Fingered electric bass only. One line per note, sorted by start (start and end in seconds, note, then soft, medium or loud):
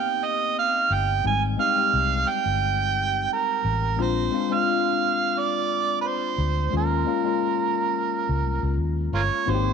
0.90 1.20 G1 medium
1.25 1.55 G#1 medium
1.94 2.23 C2 medium
2.46 3.26 G1 medium
3.64 3.98 A1 medium
3.98 4.28 A#1 medium
6.38 6.68 D2 medium
6.73 7.03 D#2 medium
8.29 8.44 C#2 medium
8.44 8.60 C2 medium
8.63 8.76 C#2 medium
8.77 9.08 D#2 medium
9.13 9.29 G1 medium
9.47 9.73 G#1 medium